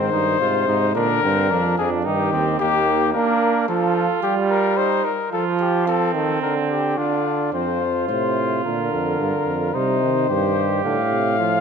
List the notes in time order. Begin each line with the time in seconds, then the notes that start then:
Already playing: G#2 D#3 C4 C5
0.12 G2 D#4
0.40 G#2 C3 F4
0.67 G#2 D#4
0.95 A#2 D3 D4 A#4
1.23 G2 C4
1.51 F2 F3 D4
1.78 F2 D4 G#4
2.05 G2 D#3 D#4 G4
2.32 D#2 C4
2.59 D#2 D#3 A#3 G4
3.13 A#3 D4 A#4
3.68 F3 F4 A4
4.23 G3 G4
4.50 A#4
4.77 D#4 C5
5.05 A#4
5.32 F3 F4 A4
5.60 G4
5.87 C4 A4
6.15 D#3 A4
6.42 D3 A#4
6.70 G4
6.98 D3 D4 F4
7.53 F2 F3 C4 C5
7.81 F4
8.09 A2 C3 C5
8.64 A#2 D3 A#4
8.92 F2
9.19 G2
9.47 F2
9.74 C3 G3 D#4 C5
10.02 D#3
10.29 G2 D#3 G4
10.84 A2 D3 F5
11.11 C3
11.38 F3 F4